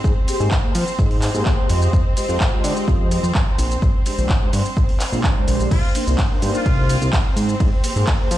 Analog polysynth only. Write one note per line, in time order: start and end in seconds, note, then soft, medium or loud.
0.28 0.36 A#3 loud
0.28 0.36 G4 medium
0.28 0.36 G#4 medium
0.28 0.36 C5 loud
0.40 0.52 A#3 medium
0.40 0.52 G4 medium
0.40 0.52 G#4 medium
0.40 0.52 C5 loud
0.63 0.71 A#3 medium
0.63 0.71 G4 medium
0.63 0.71 G#4 medium
0.63 0.71 C5 loud
1.34 1.67 A#3 medium
1.34 1.67 G4 medium
1.34 1.67 G#4 medium
1.34 1.67 C5 loud
1.69 1.80 G#3 loud
1.69 1.80 F4 medium
1.69 1.80 G4 medium
1.69 1.80 D#5 loud
1.82 1.94 G#3 medium
1.82 1.94 F4 medium
1.82 1.94 G4 medium
1.82 1.94 D#5 loud
2.17 2.25 G#3 loud
2.17 2.25 F4 medium
2.17 2.25 G4 medium
2.17 2.25 D#5 loud
2.29 2.41 G#3 medium
2.29 2.41 F4 medium
2.29 2.41 G4 medium
2.29 2.41 D#5 medium
2.52 2.85 G#3 loud
2.52 2.85 F4 medium
2.52 2.85 G4 medium
2.52 2.85 D#5 loud
2.87 2.97 G#3 medium
2.87 2.97 F4 medium
2.87 2.97 G4 medium
2.87 2.97 D#5 medium
3.00 3.07 G#3 medium
3.00 3.07 F4 medium
3.00 3.08 G4 medium
3.00 3.08 D#5 loud
3.11 3.19 G#3 loud
3.11 3.19 F4 medium
3.11 3.20 G4 medium
3.11 3.20 D#5 loud
4.06 4.14 G#3 loud
4.06 4.14 D4 medium
4.06 4.14 G4 medium
4.06 4.14 C5 loud
4.18 4.30 G#3 medium
4.18 4.30 D4 medium
4.18 4.30 G4 medium
4.18 4.30 C5 loud
4.42 4.49 G#3 medium
4.42 4.49 D4 medium
4.42 4.49 G4 medium
4.42 4.50 C5 loud
5.13 5.45 G#3 medium
5.13 5.45 D4 medium
5.13 5.45 G4 medium
5.13 5.45 C5 loud
5.47 5.58 G#3 loud
5.47 5.58 D4 medium
5.47 5.58 G4 medium
5.47 5.58 C5 loud
5.60 5.70 G#3 loud
5.60 5.70 D4 medium
5.60 5.70 G4 medium
5.60 5.70 C5 loud
5.95 6.03 A#3 medium
5.95 6.03 D4 medium
5.95 6.03 D#4 medium
5.95 6.03 C5 loud
6.07 6.19 A#3 medium
6.07 6.19 D4 medium
6.07 6.19 D#4 medium
6.07 6.19 C5 medium
6.31 6.63 A#3 loud
6.31 6.63 D4 loud
6.31 6.63 D#4 medium
6.31 6.63 C5 loud
6.66 6.75 A#3 medium
6.66 6.75 D4 medium
6.66 6.75 D#4 medium
6.66 6.75 C5 medium
6.78 6.85 A#3 medium
6.78 6.85 D4 medium
6.78 6.86 D#4 medium
6.78 6.86 C5 medium
6.89 6.97 A#3 medium
6.89 6.97 D4 medium
6.89 6.97 D#4 medium
6.89 6.98 C5 loud
7.84 7.92 A#3 medium
7.84 7.92 G4 medium
7.84 7.92 G#4 medium
7.84 7.92 C5 loud
7.96 8.08 A#3 medium
7.96 8.08 G4 medium
7.96 8.08 G#4 medium
7.96 8.08 C5 medium
8.20 8.27 A#3 loud
8.20 8.27 G4 medium
8.20 8.27 G#4 medium
8.20 8.28 C5 loud